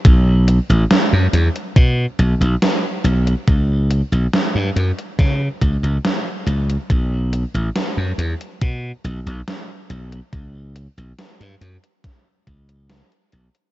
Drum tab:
HH |x-xxx-xxx-xxx-xx|x-xxx-xxx-xxx-xx|x-xxx-xxx-xxx-xx|x-xxxxxxx-xxxxxx|
SD |----o-------o---|----o---o---o---|----o-------o---|----o---o---o---|
BD |o-------o-------|o-------o-o-----|o-------o-------|o-------o-o-----|